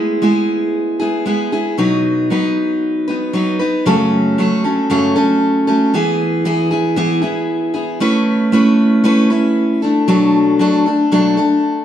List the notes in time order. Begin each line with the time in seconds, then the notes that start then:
Already playing: G#3 B3 E4 G#4
0.22 G#3 B3 E4 G#4
1.00 B3 E4 G#4
1.26 G#3 B3 E4 G#4
1.52 B3 E4 G#4
1.78 B2 F#3 B3 D#4 B4
2.30 F#3 B3 D#4 B4
3.08 B3 D#4 B4
3.33 F#3 B3 D#4 B4
3.59 B3 D#4 B4
3.86 F#2 C#3 F#3 A3 C#4 A4
4.38 F#3 A3 C#4 A4
4.64 F#3 A3 C#4 A4
4.90 F#2 C#3 F#3 A3 C#4 A4
5.16 F#3 A3 C#4 A4
5.67 F#3 A3 C#4 A4
5.94 E3 B3 E4 G#4
6.45 E3 B3 E4 G#4
6.71 B3 E4 G#4
6.96 E3 B3 E4 G#4
7.22 B3 E4 G#4
7.74 B3 E4 G#4
8.00 A3 C#4 E4 B4
8.52 A3 C#4 E4 B4
9.04 A3 C#4 E4 B4
9.30 C#4 E4 B4
9.82 A3 D4 A4
10.08 B2 F#3 A3 D4 A4
10.59 F#3 A3 D4 A4
10.86 A3 D4 A4
11.12 B2 F#3 A3 D4 A4
11.37 A3 D4 A4